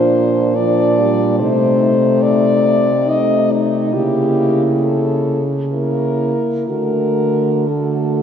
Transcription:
0, 0, Header, 1, 5, 480
1, 0, Start_track
1, 0, Tempo, 834492
1, 808, Time_signature, 3, 2, 24, 8
1, 1288, Tempo, 862069
1, 2728, Tempo, 906344
1, 3208, Tempo, 974026
1, 4436, End_track
2, 0, Start_track
2, 0, Title_t, "French horn"
2, 0, Program_c, 0, 60
2, 0, Note_on_c, 0, 72, 80
2, 319, Note_on_c, 0, 74, 79
2, 328, Note_off_c, 0, 72, 0
2, 798, Note_off_c, 0, 74, 0
2, 801, Note_on_c, 0, 72, 76
2, 1278, Note_on_c, 0, 74, 86
2, 1286, Note_off_c, 0, 72, 0
2, 1767, Note_on_c, 0, 75, 90
2, 1776, Note_off_c, 0, 74, 0
2, 2001, Note_on_c, 0, 63, 71
2, 2009, Note_off_c, 0, 75, 0
2, 2234, Note_on_c, 0, 67, 79
2, 2243, Note_off_c, 0, 63, 0
2, 2628, Note_off_c, 0, 67, 0
2, 2723, Note_on_c, 0, 69, 68
2, 3043, Note_off_c, 0, 69, 0
2, 3204, Note_on_c, 0, 70, 71
2, 3659, Note_off_c, 0, 70, 0
2, 3675, Note_on_c, 0, 70, 65
2, 4168, Note_on_c, 0, 69, 50
2, 4175, Note_off_c, 0, 70, 0
2, 4436, Note_off_c, 0, 69, 0
2, 4436, End_track
3, 0, Start_track
3, 0, Title_t, "French horn"
3, 0, Program_c, 1, 60
3, 0, Note_on_c, 1, 62, 57
3, 303, Note_off_c, 1, 62, 0
3, 328, Note_on_c, 1, 62, 62
3, 809, Note_on_c, 1, 63, 56
3, 818, Note_off_c, 1, 62, 0
3, 1753, Note_off_c, 1, 63, 0
3, 1756, Note_on_c, 1, 63, 58
3, 2227, Note_off_c, 1, 63, 0
3, 2232, Note_on_c, 1, 64, 53
3, 3032, Note_off_c, 1, 64, 0
3, 3204, Note_on_c, 1, 64, 46
3, 3680, Note_on_c, 1, 66, 37
3, 3687, Note_off_c, 1, 64, 0
3, 4162, Note_off_c, 1, 66, 0
3, 4165, Note_on_c, 1, 66, 39
3, 4436, Note_off_c, 1, 66, 0
3, 4436, End_track
4, 0, Start_track
4, 0, Title_t, "French horn"
4, 0, Program_c, 2, 60
4, 0, Note_on_c, 2, 53, 61
4, 303, Note_off_c, 2, 53, 0
4, 333, Note_on_c, 2, 53, 55
4, 571, Note_on_c, 2, 55, 54
4, 579, Note_off_c, 2, 53, 0
4, 808, Note_on_c, 2, 57, 67
4, 816, Note_off_c, 2, 55, 0
4, 1672, Note_off_c, 2, 57, 0
4, 1767, Note_on_c, 2, 57, 52
4, 2233, Note_off_c, 2, 57, 0
4, 2241, Note_on_c, 2, 58, 55
4, 3036, Note_off_c, 2, 58, 0
4, 3206, Note_on_c, 2, 58, 49
4, 3680, Note_on_c, 2, 57, 38
4, 3687, Note_off_c, 2, 58, 0
4, 4164, Note_off_c, 2, 57, 0
4, 4167, Note_on_c, 2, 57, 41
4, 4436, Note_off_c, 2, 57, 0
4, 4436, End_track
5, 0, Start_track
5, 0, Title_t, "French horn"
5, 0, Program_c, 3, 60
5, 0, Note_on_c, 3, 46, 59
5, 808, Note_on_c, 3, 48, 59
5, 816, Note_off_c, 3, 46, 0
5, 2238, Note_off_c, 3, 48, 0
5, 2242, Note_on_c, 3, 49, 60
5, 3505, Note_off_c, 3, 49, 0
5, 3678, Note_on_c, 3, 50, 48
5, 4436, Note_off_c, 3, 50, 0
5, 4436, End_track
0, 0, End_of_file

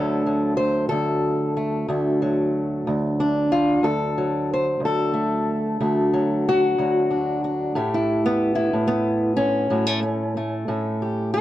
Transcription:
0, 0, Header, 1, 2, 480
1, 0, Start_track
1, 0, Key_signature, 2, "major"
1, 0, Tempo, 650759
1, 2834, Time_signature, 12, 3, 24, 8
1, 8415, End_track
2, 0, Start_track
2, 0, Title_t, "Steel-string acoustic guitar"
2, 0, Program_c, 0, 25
2, 0, Note_on_c, 0, 38, 70
2, 0, Note_on_c, 0, 50, 49
2, 0, Note_on_c, 0, 54, 51
2, 0, Note_on_c, 0, 57, 46
2, 0, Note_on_c, 0, 69, 76
2, 193, Note_off_c, 0, 54, 0
2, 196, Note_on_c, 0, 54, 44
2, 416, Note_off_c, 0, 69, 0
2, 419, Note_on_c, 0, 72, 81
2, 652, Note_off_c, 0, 72, 0
2, 655, Note_on_c, 0, 69, 92
2, 665, Note_off_c, 0, 38, 0
2, 668, Note_on_c, 0, 38, 65
2, 1152, Note_off_c, 0, 57, 0
2, 1155, Note_on_c, 0, 57, 46
2, 1387, Note_off_c, 0, 38, 0
2, 1390, Note_on_c, 0, 38, 79
2, 1395, Note_off_c, 0, 57, 0
2, 1398, Note_on_c, 0, 57, 46
2, 1628, Note_off_c, 0, 54, 0
2, 1636, Note_on_c, 0, 54, 47
2, 2105, Note_off_c, 0, 69, 0
2, 2109, Note_off_c, 0, 38, 0
2, 2118, Note_on_c, 0, 38, 71
2, 2360, Note_on_c, 0, 62, 67
2, 2592, Note_off_c, 0, 57, 0
2, 2595, Note_on_c, 0, 65, 89
2, 2814, Note_off_c, 0, 38, 0
2, 2823, Note_on_c, 0, 38, 68
2, 2829, Note_off_c, 0, 62, 0
2, 2832, Note_on_c, 0, 69, 79
2, 2834, Note_off_c, 0, 65, 0
2, 3070, Note_off_c, 0, 54, 0
2, 3079, Note_on_c, 0, 54, 41
2, 3313, Note_off_c, 0, 69, 0
2, 3344, Note_on_c, 0, 72, 72
2, 3531, Note_off_c, 0, 38, 0
2, 3540, Note_on_c, 0, 38, 63
2, 3569, Note_off_c, 0, 72, 0
2, 3577, Note_on_c, 0, 69, 96
2, 3787, Note_on_c, 0, 57, 44
2, 4267, Note_off_c, 0, 38, 0
2, 4280, Note_off_c, 0, 57, 0
2, 4282, Note_on_c, 0, 38, 68
2, 4283, Note_on_c, 0, 57, 48
2, 4515, Note_off_c, 0, 54, 0
2, 4524, Note_on_c, 0, 54, 45
2, 4758, Note_off_c, 0, 57, 0
2, 4784, Note_on_c, 0, 66, 105
2, 4994, Note_off_c, 0, 38, 0
2, 4999, Note_off_c, 0, 54, 0
2, 5003, Note_on_c, 0, 38, 62
2, 5006, Note_off_c, 0, 69, 0
2, 5009, Note_on_c, 0, 54, 39
2, 5240, Note_on_c, 0, 62, 45
2, 5477, Note_off_c, 0, 62, 0
2, 5487, Note_on_c, 0, 62, 43
2, 5717, Note_on_c, 0, 45, 70
2, 5719, Note_off_c, 0, 38, 0
2, 5719, Note_off_c, 0, 54, 0
2, 5721, Note_off_c, 0, 50, 0
2, 5721, Note_off_c, 0, 62, 0
2, 5722, Note_on_c, 0, 57, 47
2, 5725, Note_on_c, 0, 67, 44
2, 5849, Note_off_c, 0, 66, 0
2, 5858, Note_on_c, 0, 64, 73
2, 6078, Note_off_c, 0, 57, 0
2, 6090, Note_on_c, 0, 59, 81
2, 6299, Note_off_c, 0, 64, 0
2, 6308, Note_on_c, 0, 64, 84
2, 6431, Note_off_c, 0, 45, 0
2, 6440, Note_on_c, 0, 45, 58
2, 6536, Note_off_c, 0, 59, 0
2, 6545, Note_on_c, 0, 59, 85
2, 6906, Note_off_c, 0, 64, 0
2, 6909, Note_on_c, 0, 61, 88
2, 7149, Note_off_c, 0, 59, 0
2, 7151, Note_off_c, 0, 45, 0
2, 7156, Note_on_c, 0, 54, 47
2, 7159, Note_on_c, 0, 45, 71
2, 7276, Note_off_c, 0, 54, 0
2, 7276, Note_on_c, 0, 57, 41
2, 7387, Note_off_c, 0, 57, 0
2, 7396, Note_on_c, 0, 57, 46
2, 7635, Note_off_c, 0, 57, 0
2, 7648, Note_on_c, 0, 57, 47
2, 7869, Note_off_c, 0, 45, 0
2, 7871, Note_off_c, 0, 61, 0
2, 7878, Note_on_c, 0, 45, 66
2, 7882, Note_on_c, 0, 61, 45
2, 8119, Note_off_c, 0, 67, 0
2, 8127, Note_on_c, 0, 67, 47
2, 8359, Note_off_c, 0, 67, 0
2, 8362, Note_on_c, 0, 69, 104
2, 8415, Note_off_c, 0, 45, 0
2, 8415, Note_off_c, 0, 57, 0
2, 8415, Note_off_c, 0, 61, 0
2, 8415, Note_off_c, 0, 69, 0
2, 8415, End_track
0, 0, End_of_file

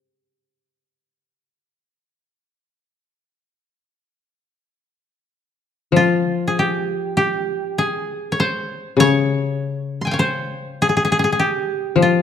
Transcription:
0, 0, Header, 1, 3, 480
1, 0, Start_track
1, 0, Tempo, 1212121
1, 383, Time_signature, 4, 2, 24, 8
1, 1345, Tempo, 1255230
1, 2785, Tempo, 1207243
1, 4796, End_track
2, 0, Start_track
2, 0, Title_t, "Koto"
2, 0, Program_c, 0, 107
2, 0, Note_on_c, 0, 72, 75
2, 1819, Note_off_c, 0, 72, 0
2, 2327, Note_on_c, 0, 65, 76
2, 2522, Note_on_c, 0, 68, 56
2, 2566, Note_on_c, 0, 67, 68
2, 2589, Note_off_c, 0, 68, 0
2, 2786, Note_off_c, 0, 67, 0
2, 2788, Note_on_c, 0, 67, 76
2, 3032, Note_on_c, 0, 68, 71
2, 3056, Note_off_c, 0, 67, 0
2, 3178, Note_off_c, 0, 65, 0
2, 3245, Note_on_c, 0, 73, 67
2, 3276, Note_on_c, 0, 72, 79
2, 3300, Note_off_c, 0, 73, 0
2, 3516, Note_on_c, 0, 73, 95
2, 3540, Note_off_c, 0, 72, 0
2, 3815, Note_off_c, 0, 68, 0
2, 3919, Note_on_c, 0, 84, 35
2, 3933, Note_on_c, 0, 80, 37
2, 3940, Note_on_c, 0, 79, 44
2, 3958, Note_on_c, 0, 77, 43
2, 3965, Note_off_c, 0, 73, 0
2, 3967, Note_on_c, 0, 73, 52
2, 3989, Note_on_c, 0, 72, 86
2, 3991, Note_off_c, 0, 84, 0
2, 4239, Note_on_c, 0, 68, 81
2, 4263, Note_off_c, 0, 79, 0
2, 4266, Note_off_c, 0, 68, 0
2, 4268, Note_on_c, 0, 68, 57
2, 4296, Note_off_c, 0, 68, 0
2, 4298, Note_on_c, 0, 68, 70
2, 4328, Note_off_c, 0, 68, 0
2, 4329, Note_on_c, 0, 68, 64
2, 4356, Note_off_c, 0, 68, 0
2, 4358, Note_on_c, 0, 68, 71
2, 4386, Note_off_c, 0, 68, 0
2, 4387, Note_on_c, 0, 68, 60
2, 4405, Note_off_c, 0, 68, 0
2, 4407, Note_on_c, 0, 68, 60
2, 4438, Note_off_c, 0, 68, 0
2, 4440, Note_on_c, 0, 68, 57
2, 4450, Note_off_c, 0, 80, 0
2, 4468, Note_on_c, 0, 67, 70
2, 4492, Note_off_c, 0, 68, 0
2, 4532, Note_off_c, 0, 77, 0
2, 4626, Note_off_c, 0, 73, 0
2, 4671, Note_off_c, 0, 72, 0
2, 4718, Note_on_c, 0, 65, 63
2, 4796, Note_off_c, 0, 65, 0
2, 4796, Note_off_c, 0, 67, 0
2, 4796, End_track
3, 0, Start_track
3, 0, Title_t, "Koto"
3, 0, Program_c, 1, 107
3, 2310, Note_on_c, 1, 53, 49
3, 3502, Note_on_c, 1, 49, 50
3, 3635, Note_off_c, 1, 53, 0
3, 4691, Note_on_c, 1, 53, 59
3, 4702, Note_off_c, 1, 49, 0
3, 4796, Note_off_c, 1, 53, 0
3, 4796, End_track
0, 0, End_of_file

